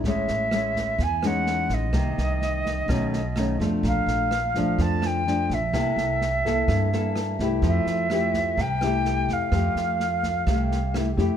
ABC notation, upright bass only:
X:1
M:4/4
L:1/16
Q:1/4=127
K:F
V:1 name="Upright bass" clef=bass
A,,,2 A,,,6 E,,6 A,,,2 | C,,2 C,,6 =B,,,6 F,,2 | B,,,2 B,,,6 F,,6 B,,,2 | C,,2 C,,6 G,,6 C,,2 |
F,,2 F,,6 C,,6 F,, z | F,,2 F,,6 C,,6 F,, z |]